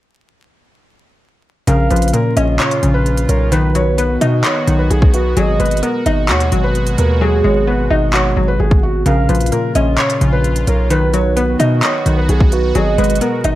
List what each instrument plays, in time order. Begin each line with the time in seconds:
1.67 808-style bass A#1, analog synth pad A#2 C#3 F4, synth pluck C#3, felt piano A#4, soft synth lead F5, closed hi-hat
1.90 808-style bass A#1, synth pluck F3, felt piano B4, closed hi-hat
1.96 closed hi-hat
2.02 closed hi-hat
2.08 closed hi-hat
2.13 synth pluck A#2, felt piano A#4, closed hi-hat
2.37 808-style bass A#1, synth pluck C#4, felt piano D#5, closed hi-hat
2.59 felt piano C#5, synth pluck C#5, clap, closed hi-hat
2.71 closed hi-hat
2.83 808-style bass A#1, synth pluck C#3, closed hi-hat
2.94 felt piano B4
3.06 closed hi-hat
3.17 closed hi-hat
3.29 808-style bass B1, felt piano A#4, soft synth lead C#5, closed hi-hat
3.52 synth pluck D#3, analog synth pad D#3 B3 F#4, felt piano B4, soft synth lead B4, closed hi-hat
3.75 synth pluck F#3, felt piano C#5, closed hi-hat
3.98 synth pluck B3, felt piano B4, closed hi-hat
4.21 808-style bass B2, synth pluck D#4, felt piano D#5, closed hi-hat
4.44 felt piano C#5, synth pluck D#5, clap, closed hi-hat
4.67 808-style bass B1, synth pluck D#3, closed hi-hat
4.79 felt piano B4
4.90 808-style bass B1, felt piano G#4, closed hi-hat
5.02 kick
5.14 felt piano F#4, soft synth lead B4, closed hi-hat
5.37 808-style bass G#1, analog synth pad B2 G#3 F#4, synth pluck F#3, felt piano G#4, soft synth lead D#5, closed hi-hat
5.60 808-style bass G#1, synth pluck G#3, felt piano B4, closed hi-hat
5.66 closed hi-hat
5.71 closed hi-hat
5.77 closed hi-hat
5.83 synth pluck B3, felt piano A#4, closed hi-hat
6.06 808-style bass G#1, synth pluck D#4, felt piano D#5, closed hi-hat
6.29 808-style bass D#2, synth pluck F#4, felt piano C#5, clap, closed hi-hat
6.40 closed hi-hat
6.52 808-style bass G#1, synth pluck F#3, closed hi-hat
6.64 felt piano B4
6.75 closed hi-hat
6.87 closed hi-hat
6.98 808-style bass D#2, felt piano A#4, soft synth lead B4, closed hi-hat
7.21 synth pluck F#3, soft synth lead G#4, felt piano G#4
7.44 808-style bass G#1, synth pluck G#3, felt piano C#5
7.67 synth pluck B3, felt piano B4
7.90 808-style bass G#1, synth pluck D#4, felt piano D#5
8.13 synth pluck F#4, felt piano C#5, clap
8.37 808-style bass G#1, synth pluck F#3
8.48 felt piano B4
8.60 808-style bass G#1, felt piano G#4
8.71 kick
8.83 felt piano F#4
9.06 808-style bass A#1, analog synth pad A#2 C#3 F4, synth pluck C#3, felt piano A#4, soft synth lead F5, closed hi-hat
9.29 808-style bass A#1, synth pluck F3, felt piano B4, closed hi-hat
9.35 closed hi-hat
9.40 closed hi-hat
9.46 closed hi-hat
9.52 synth pluck A#2, felt piano A#4, closed hi-hat
9.75 808-style bass A#1, synth pluck C#4, felt piano D#5, closed hi-hat
9.98 felt piano C#5, synth pluck C#5, clap, closed hi-hat
10.10 closed hi-hat
10.21 808-style bass A#1, synth pluck C#3, closed hi-hat
10.33 felt piano B4
10.44 closed hi-hat
10.56 closed hi-hat
10.67 808-style bass B1, felt piano A#4, soft synth lead C#5, closed hi-hat
10.90 synth pluck D#3, analog synth pad D#3 B3 F#4, felt piano B4, soft synth lead B4, closed hi-hat
11.13 synth pluck F#3, felt piano C#5, closed hi-hat
11.36 synth pluck B3, felt piano B4, closed hi-hat
11.59 808-style bass B2, synth pluck D#4, felt piano D#5, closed hi-hat
11.83 felt piano C#5, synth pluck D#5, clap, closed hi-hat
12.06 808-style bass B1, synth pluck D#3, closed hi-hat
12.17 felt piano B4
12.29 808-style bass B1, felt piano G#4, closed hi-hat
12.40 kick
12.52 felt piano F#4, soft synth lead B4, closed hi-hat
12.75 808-style bass G#1, analog synth pad B2 G#3, synth pluck F#3, felt piano G#4, soft synth lead D#5, closed hi-hat
12.98 808-style bass G#1, synth pluck G#3, felt piano B4, closed hi-hat
13.04 closed hi-hat
13.10 closed hi-hat
13.15 closed hi-hat
13.21 synth pluck B3, felt piano A#4, closed hi-hat
13.44 808-style bass G#1, synth pluck D#4, felt piano D#5, closed hi-hat